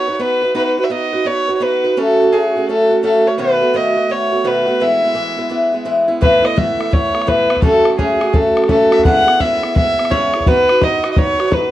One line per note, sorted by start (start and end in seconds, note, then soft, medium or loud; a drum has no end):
0.00 0.14 C#5 medium
0.08 0.19 D#4 soft
0.08 0.19 F#4 soft
0.08 0.20 B4 soft
0.14 0.23 C#5 medium
0.19 0.42 B3 medium
0.19 0.43 D#4 medium
0.19 0.42 F#4 medium
0.19 0.41 B4 medium
0.19 0.56 B4 medium
0.42 0.54 D#4 soft
0.42 0.55 F#4 soft
0.42 0.55 B4 soft
0.55 0.78 B3 medium
0.55 0.78 D#4 medium
0.55 0.78 F#4 medium
0.55 0.76 B4 medium
0.55 0.65 B4 loud
0.66 0.78 B4 medium
0.77 0.89 D#4 soft
0.77 0.90 F#4 soft
0.77 0.90 B4 soft
0.77 0.86 B4 loud
0.84 0.93 E5 medium
0.90 1.13 B3 medium
0.90 1.13 D#4 medium
0.90 1.13 F#4 medium
0.90 1.12 B4 medium
0.90 1.28 D#5 medium
1.13 1.25 D#4 soft
1.13 1.25 F#4 soft
1.13 1.26 B4 soft
1.25 1.48 B3 medium
1.25 1.49 D#4 medium
1.25 1.48 F#4 medium
1.25 1.47 B4 medium
1.25 1.56 C#5 loud
1.48 1.60 D#4 soft
1.48 1.60 F#4 soft
1.48 1.61 B4 soft
1.56 1.64 C#5 medium
1.60 1.83 B3 medium
1.60 1.84 D#4 medium
1.60 1.84 F#4 medium
1.60 1.83 B4 medium
1.60 1.91 B4 medium
1.84 1.97 D#4 soft
1.84 1.97 F#4 medium
1.84 1.97 B4 medium
1.91 2.00 B4 medium
1.97 2.19 F#3 medium
1.97 2.19 A3 medium
1.97 2.20 C#4 medium
1.97 2.19 F#4 medium
1.97 2.34 A4 loud
2.20 2.32 A3 soft
2.20 2.32 C#4 soft
2.20 2.32 F#4 medium
2.32 2.55 F#3 medium
2.32 2.55 A3 medium
2.32 2.55 C#4 medium
2.32 2.54 F#4 medium
2.32 2.68 G#4 medium
2.56 2.68 A3 soft
2.56 2.68 C#4 soft
2.56 2.68 F#4 soft
2.68 2.91 F#3 medium
2.68 2.89 A3 medium
2.68 2.90 C#4 medium
2.68 2.88 F#4 medium
2.68 3.01 A4 medium
2.89 3.03 A3 soft
2.89 3.02 C#4 soft
2.89 3.02 F#4 soft
3.03 3.26 F#3 medium
3.03 3.26 A3 medium
3.03 3.26 C#4 medium
3.03 3.24 F#4 medium
3.03 3.29 A4 medium
3.25 3.38 A3 soft
3.25 3.38 C#4 soft
3.25 3.38 F#4 medium
3.25 3.39 C#5 medium
3.38 3.61 B2 medium
3.38 3.61 D#3 medium
3.38 3.61 A3 loud
3.38 3.61 B3 medium
3.38 3.60 F#4 loud
3.38 3.78 B4 loud
3.61 3.73 A3 soft
3.61 3.73 B3 soft
3.61 3.74 F#4 soft
3.74 3.96 B2 medium
3.74 3.96 D#3 medium
3.74 3.96 A3 medium
3.74 3.97 B3 medium
3.74 3.96 F#4 medium
3.74 4.13 D#5 medium
3.97 4.09 A3 soft
3.97 4.08 B3 soft
3.97 4.09 F#4 medium
4.09 4.32 D#3 medium
4.09 4.31 A3 medium
4.09 4.32 B3 medium
4.09 4.30 F#4 medium
4.09 4.49 C#5 medium
4.32 4.43 A3 soft
4.32 4.43 B3 soft
4.32 4.44 F#4 soft
4.44 4.67 B2 medium
4.44 4.67 D#3 medium
4.44 4.66 A3 medium
4.44 4.67 B3 medium
4.44 4.65 F#4 medium
4.44 4.84 B4 medium
4.66 4.80 A3 soft
4.66 4.80 B3 soft
4.66 4.80 F#4 medium
4.80 5.03 E3 medium
4.80 5.03 G#3 medium
4.80 5.02 B3 medium
4.80 5.01 E4 medium
4.80 5.87 E5 loud
5.03 5.14 G#3 soft
5.03 5.14 B3 soft
5.03 5.14 E4 medium
5.14 5.38 E3 medium
5.14 5.38 G#3 medium
5.14 5.37 B3 medium
5.14 5.36 E4 medium
5.37 5.49 G#3 soft
5.37 5.49 B3 medium
5.37 5.50 E4 medium
5.49 5.73 E3 medium
5.49 5.73 G#3 medium
5.49 5.73 B3 medium
5.49 5.71 E4 medium
5.72 5.84 G#3 soft
5.72 5.85 B3 soft
5.72 5.85 E4 soft
5.85 6.08 E3 medium
5.85 6.09 G#3 medium
5.85 6.07 B3 medium
5.85 6.07 E4 medium
6.08 6.21 G#3 soft
6.08 6.21 B3 medium
6.08 6.21 E4 medium
6.21 6.44 A2 medium
6.21 6.44 E3 medium
6.21 6.43 A3 medium
6.21 6.42 B3 medium
6.21 6.41 E4 loud
6.21 6.47 B4 loud
6.21 bodhran medium
6.42 6.55 A3 soft
6.42 6.55 B3 soft
6.42 6.56 E4 soft
6.42 6.60 D#5 medium
6.42 bodhran medium
6.56 6.79 A2 medium
6.56 6.79 E3 medium
6.56 6.78 A3 medium
6.56 6.78 B3 medium
6.56 6.77 E4 medium
6.56 6.95 E5 medium
6.56 bodhran medium
6.78 6.90 A3 soft
6.78 6.90 B3 soft
6.78 6.90 E4 soft
6.78 bodhran medium
6.90 7.14 E3 medium
6.90 7.14 A3 medium
6.90 7.13 B3 medium
6.90 7.12 E4 medium
6.90 7.30 C#5 medium
6.90 bodhran medium
7.13 7.26 A3 soft
7.13 7.27 B3 soft
7.13 7.27 E4 medium
7.13 bodhran medium
7.22 bodhran medium
7.27 7.50 A2 medium
7.27 7.50 E3 medium
7.27 7.50 A3 medium
7.27 7.49 B3 medium
7.27 7.49 E4 medium
7.27 7.62 B4 loud
7.27 bodhran medium
7.50 7.62 A3 soft
7.50 7.63 B3 soft
7.50 7.63 E4 medium
7.50 bodhran medium
7.57 bodhran soft
7.62 7.85 F#3 medium
7.62 7.84 A3 medium
7.62 7.86 C#4 medium
7.62 7.84 F#4 medium
7.62 7.96 A4 loud
7.62 bodhran medium
7.85 7.98 A3 soft
7.85 7.98 C#4 soft
7.85 7.98 F#4 medium
7.85 bodhran medium
7.98 8.21 F#3 medium
7.98 8.20 A3 medium
7.98 8.21 C#4 medium
7.98 8.19 F#4 medium
7.98 8.35 G#4 medium
7.98 bodhran medium
8.20 8.33 A3 soft
8.20 8.33 C#4 soft
8.20 8.33 F#4 soft
8.20 bodhran medium
8.33 8.56 F#3 medium
8.33 8.56 A3 medium
8.33 8.56 C#4 medium
8.33 8.54 F#4 medium
8.33 8.69 A4 loud
8.33 bodhran medium
8.55 8.68 A3 soft
8.55 8.68 C#4 soft
8.55 8.69 F#4 soft
8.55 bodhran medium
8.64 bodhran soft
8.69 8.92 F#3 medium
8.69 8.91 A3 medium
8.69 8.91 C#4 medium
8.69 8.90 F#4 medium
8.69 8.94 A4 medium
8.69 bodhran medium
8.91 9.05 A3 soft
8.91 9.05 C#4 soft
8.91 9.04 F#4 medium
8.91 9.05 E5 loud
8.91 bodhran medium
8.99 bodhran soft
9.05 9.27 C#3 medium
9.05 9.28 G#3 medium
9.05 9.28 B3 medium
9.05 9.27 E4 medium
9.05 9.25 G#4 medium
9.05 9.42 F#5 loud
9.05 bodhran medium
9.27 9.39 B3 soft
9.27 9.40 E4 soft
9.27 9.40 G#4 soft
9.27 bodhran medium
9.40 9.63 C#3 medium
9.40 9.63 G#3 medium
9.40 9.63 B3 medium
9.40 9.62 E4 medium
9.40 9.61 G#4 medium
9.40 9.76 E5 loud
9.40 bodhran medium
9.63 9.74 B3 soft
9.63 9.75 E4 soft
9.63 9.75 G#4 soft
9.63 bodhran medium
9.75 9.98 G#3 medium
9.75 9.98 B3 medium
9.75 9.97 E4 medium
9.75 9.96 G#4 medium
9.75 10.12 E5 loud
9.75 bodhran medium
9.97 10.10 B3 soft
9.97 10.10 E4 soft
9.97 10.10 G#4 soft
9.97 bodhran medium
10.05 bodhran medium
10.10 10.33 C#3 medium
10.10 10.34 G#3 medium
10.10 10.34 B3 medium
10.10 10.34 E4 medium
10.10 10.33 G#4 medium
10.10 10.41 C#5 loud
10.10 bodhran medium
10.34 10.46 B3 soft
10.34 10.47 E4 medium
10.34 10.46 G#4 medium
10.34 bodhran medium
10.40 10.49 C#5 medium
10.40 bodhran soft
10.46 10.69 B3 medium
10.46 10.69 D#4 medium
10.46 10.69 F#4 medium
10.46 10.68 B4 medium
10.46 10.85 B4 loud
10.46 bodhran medium
10.69 10.82 F#4 soft
10.69 bodhran medium
10.81 11.05 B3 medium
10.81 11.05 D#4 medium
10.81 11.03 F#4 medium
10.81 11.03 B4 medium
10.81 11.11 D#5 medium
10.81 bodhran medium
11.04 11.16 D#4 soft
11.04 11.16 F#4 soft
11.04 11.17 B4 medium
11.04 bodhran medium
11.12 11.20 D#5 medium
11.16 11.39 B3 medium
11.16 11.39 D#4 medium
11.16 11.38 F#4 medium
11.16 11.38 B4 medium
11.16 11.47 C#5 loud
11.16 bodhran medium
11.39 11.50 D#4 soft
11.39 11.50 F#4 soft
11.39 11.51 B4 soft
11.39 bodhran medium
11.47 11.71 B3 medium
11.47 11.71 D#4 medium
11.47 11.55 C#5 medium
11.52 11.71 F#4 medium
11.52 11.71 B4 medium
11.52 bodhran medium